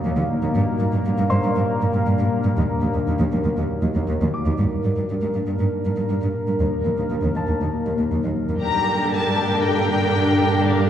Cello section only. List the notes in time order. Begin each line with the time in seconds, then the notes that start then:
0.05 D#2
0.17 D#2
0.43 D#2
0.55 G2
0.80 G2
0.93 G2
1.05 G2
1.18 G2
1.31 G2
1.44 G2
1.56 G2
1.81 G2
1.94 G2
2.07 G2
2.19 G2
2.44 G2
2.57 D#2
2.82 D#2
2.94 D#2
3.07 D#2
3.20 D#2
3.32 D#2
3.45 D#2
3.57 D#2
3.83 D#2
3.95 D#2
4.08 D#2
4.21 D#2
4.46 D#2
4.59 G2
4.84 G2
4.97 G2
5.10 G2
5.22 G2
5.35 G2
5.47 G2
5.59 G2
5.85 G2
5.97 G2
6.10 G2
6.22 G2
6.48 G2
6.60 D#2
6.85 D#2
6.99 D#2
7.11 D#2
7.23 D#2
7.36 D#2
7.49 D#2
7.61 D#2
7.87 D#2
7.99 D#2
8.12 D#2
8.24 D#2
8.49 D#2
8.62 G2